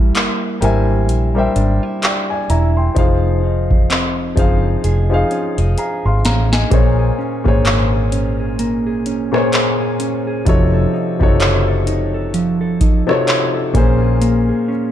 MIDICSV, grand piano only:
0, 0, Header, 1, 2, 480
1, 0, Start_track
1, 0, Key_signature, -5, "minor"
1, 0, Tempo, 937500
1, 1518, Time_signature, 4, 2, 24, 8
1, 7638, End_track
2, 0, Start_track
2, 0, Title_t, "Grand piano"
2, 0, Program_c, 0, 0
2, 0, Control_c, 0, 64, 127
2, 0, Note_on_c, 0, 55, 88
2, 0, Note_on_c, 0, 70, 82
2, 0, Note_on_c, 0, 72, 81
2, 0, Note_on_c, 0, 76, 81
2, 0, Note_on_c, 0, 80, 95
2, 130, Note_off_c, 0, 55, 0
2, 134, Note_off_c, 0, 70, 0
2, 136, Note_off_c, 0, 72, 0
2, 138, Note_off_c, 0, 76, 0
2, 157, Note_off_c, 0, 80, 0
2, 311, Note_on_c, 0, 55, 84
2, 314, Note_on_c, 0, 79, 76
2, 318, Note_on_c, 0, 70, 76
2, 323, Note_on_c, 0, 72, 72
2, 327, Note_on_c, 0, 76, 72
2, 331, Note_on_c, 0, 80, 91
2, 547, Note_off_c, 0, 55, 0
2, 548, Note_off_c, 0, 79, 0
2, 550, Note_off_c, 0, 70, 0
2, 552, Note_off_c, 0, 72, 0
2, 554, Note_off_c, 0, 76, 0
2, 556, Note_off_c, 0, 80, 0
2, 690, Note_on_c, 0, 55, 82
2, 694, Note_on_c, 0, 67, 72
2, 697, Note_on_c, 0, 70, 73
2, 701, Note_on_c, 0, 72, 75
2, 705, Note_on_c, 0, 76, 75
2, 709, Note_on_c, 0, 79, 89
2, 1033, Note_off_c, 0, 79, 0
2, 1040, Note_on_c, 0, 79, 62
2, 1042, Note_off_c, 0, 76, 0
2, 1044, Note_on_c, 0, 74, 52
2, 1172, Note_off_c, 0, 79, 0
2, 1173, Note_off_c, 0, 74, 0
2, 1178, Note_on_c, 0, 80, 72
2, 1182, Note_on_c, 0, 74, 59
2, 1222, Note_off_c, 0, 55, 0
2, 1224, Note_off_c, 0, 67, 0
2, 1226, Note_off_c, 0, 70, 0
2, 1228, Note_off_c, 0, 72, 0
2, 1274, Note_off_c, 0, 80, 0
2, 1276, Note_off_c, 0, 74, 0
2, 1280, Note_on_c, 0, 82, 72
2, 1283, Note_on_c, 0, 76, 57
2, 1411, Note_off_c, 0, 82, 0
2, 1413, Note_off_c, 0, 76, 0
2, 1418, Note_on_c, 0, 84, 62
2, 1421, Note_on_c, 0, 79, 54
2, 1509, Note_on_c, 0, 53, 81
2, 1513, Note_on_c, 0, 63, 75
2, 1518, Note_on_c, 0, 68, 73
2, 1523, Note_on_c, 0, 72, 79
2, 1525, Control_c, 0, 64, 0
2, 1528, Note_on_c, 0, 77, 87
2, 1601, Control_c, 0, 64, 127
2, 1646, Note_off_c, 0, 84, 0
2, 1647, Note_off_c, 0, 79, 0
2, 1977, Note_off_c, 0, 53, 0
2, 1980, Note_off_c, 0, 63, 0
2, 1982, Note_off_c, 0, 68, 0
2, 1985, Note_off_c, 0, 72, 0
2, 1987, Note_off_c, 0, 77, 0
2, 2230, Note_on_c, 0, 53, 81
2, 2235, Note_on_c, 0, 63, 75
2, 2240, Note_on_c, 0, 68, 73
2, 2245, Note_on_c, 0, 72, 74
2, 2249, Note_on_c, 0, 77, 86
2, 2466, Note_off_c, 0, 53, 0
2, 2469, Note_off_c, 0, 63, 0
2, 2471, Note_off_c, 0, 68, 0
2, 2474, Note_off_c, 0, 72, 0
2, 2476, Note_off_c, 0, 77, 0
2, 2611, Note_on_c, 0, 53, 83
2, 2616, Note_on_c, 0, 63, 71
2, 2621, Note_on_c, 0, 68, 73
2, 2626, Note_on_c, 0, 72, 74
2, 2631, Note_on_c, 0, 77, 90
2, 2725, Note_off_c, 0, 77, 0
2, 2961, Note_on_c, 0, 82, 58
2, 2965, Note_on_c, 0, 77, 51
2, 3092, Note_off_c, 0, 82, 0
2, 3094, Note_off_c, 0, 77, 0
2, 3101, Note_on_c, 0, 84, 67
2, 3104, Note_on_c, 0, 77, 59
2, 3143, Note_off_c, 0, 53, 0
2, 3145, Note_off_c, 0, 63, 0
2, 3148, Note_off_c, 0, 68, 0
2, 3150, Note_off_c, 0, 72, 0
2, 3195, Note_off_c, 0, 84, 0
2, 3197, Note_off_c, 0, 77, 0
2, 3201, Note_on_c, 0, 82, 69
2, 3204, Note_on_c, 0, 77, 59
2, 3332, Note_off_c, 0, 82, 0
2, 3334, Note_off_c, 0, 77, 0
2, 3340, Note_on_c, 0, 80, 64
2, 3344, Note_on_c, 0, 75, 54
2, 3432, Note_on_c, 0, 46, 82
2, 3437, Note_on_c, 0, 58, 77
2, 3441, Note_on_c, 0, 68, 77
2, 3445, Control_c, 0, 64, 0
2, 3447, Note_on_c, 0, 72, 78
2, 3451, Note_on_c, 0, 73, 92
2, 3524, Control_c, 0, 64, 127
2, 3567, Note_off_c, 0, 80, 0
2, 3569, Note_off_c, 0, 75, 0
2, 3667, Note_off_c, 0, 46, 0
2, 3670, Note_off_c, 0, 58, 0
2, 3672, Note_off_c, 0, 68, 0
2, 3675, Note_off_c, 0, 72, 0
2, 3677, Note_off_c, 0, 73, 0
2, 3810, Note_on_c, 0, 46, 85
2, 3816, Note_on_c, 0, 58, 81
2, 3821, Note_on_c, 0, 68, 77
2, 3826, Note_on_c, 0, 72, 81
2, 3830, Note_on_c, 0, 73, 97
2, 4412, Note_off_c, 0, 46, 0
2, 4414, Note_off_c, 0, 58, 0
2, 4417, Note_off_c, 0, 68, 0
2, 4419, Note_off_c, 0, 72, 0
2, 4421, Note_off_c, 0, 73, 0
2, 4770, Note_on_c, 0, 46, 85
2, 4775, Note_on_c, 0, 58, 76
2, 4780, Note_on_c, 0, 68, 77
2, 4785, Note_on_c, 0, 72, 76
2, 4790, Note_on_c, 0, 73, 92
2, 5143, Note_off_c, 0, 46, 0
2, 5145, Note_off_c, 0, 58, 0
2, 5147, Note_off_c, 0, 68, 0
2, 5150, Note_off_c, 0, 72, 0
2, 5152, Note_off_c, 0, 73, 0
2, 5352, Note_on_c, 0, 53, 84
2, 5355, Note_on_c, 0, 48, 78
2, 5360, Note_on_c, 0, 63, 82
2, 5364, Control_c, 0, 64, 0
2, 5364, Note_on_c, 0, 66, 83
2, 5368, Note_on_c, 0, 69, 83
2, 5372, Note_on_c, 0, 73, 98
2, 5460, Control_c, 0, 64, 127
2, 5587, Note_off_c, 0, 53, 0
2, 5589, Note_off_c, 0, 48, 0
2, 5591, Note_off_c, 0, 63, 0
2, 5593, Note_off_c, 0, 66, 0
2, 5595, Note_off_c, 0, 69, 0
2, 5597, Note_off_c, 0, 73, 0
2, 5731, Note_on_c, 0, 53, 85
2, 5735, Note_on_c, 0, 48, 82
2, 5739, Note_on_c, 0, 63, 82
2, 5743, Note_on_c, 0, 66, 83
2, 5747, Note_on_c, 0, 69, 81
2, 5751, Note_on_c, 0, 73, 99
2, 6332, Note_off_c, 0, 53, 0
2, 6334, Note_off_c, 0, 48, 0
2, 6336, Note_off_c, 0, 63, 0
2, 6338, Note_off_c, 0, 66, 0
2, 6340, Note_off_c, 0, 69, 0
2, 6342, Note_off_c, 0, 73, 0
2, 6690, Note_on_c, 0, 53, 90
2, 6695, Note_on_c, 0, 48, 80
2, 6699, Note_on_c, 0, 63, 75
2, 6703, Note_on_c, 0, 66, 79
2, 6707, Note_on_c, 0, 69, 75
2, 6710, Note_on_c, 0, 73, 95
2, 7032, Note_on_c, 0, 46, 87
2, 7035, Note_off_c, 0, 53, 0
2, 7037, Note_off_c, 0, 48, 0
2, 7037, Note_on_c, 0, 58, 83
2, 7039, Note_off_c, 0, 63, 0
2, 7041, Note_off_c, 0, 66, 0
2, 7041, Note_on_c, 0, 61, 84
2, 7043, Note_off_c, 0, 69, 0
2, 7044, Control_c, 0, 64, 0
2, 7045, Note_off_c, 0, 73, 0
2, 7046, Note_on_c, 0, 68, 87
2, 7051, Note_on_c, 0, 72, 102
2, 7141, Control_c, 0, 64, 127
2, 7515, Note_off_c, 0, 46, 0
2, 7517, Note_off_c, 0, 58, 0
2, 7520, Note_off_c, 0, 61, 0
2, 7522, Note_off_c, 0, 68, 0
2, 7525, Note_off_c, 0, 72, 0
2, 7638, End_track
0, 0, End_of_file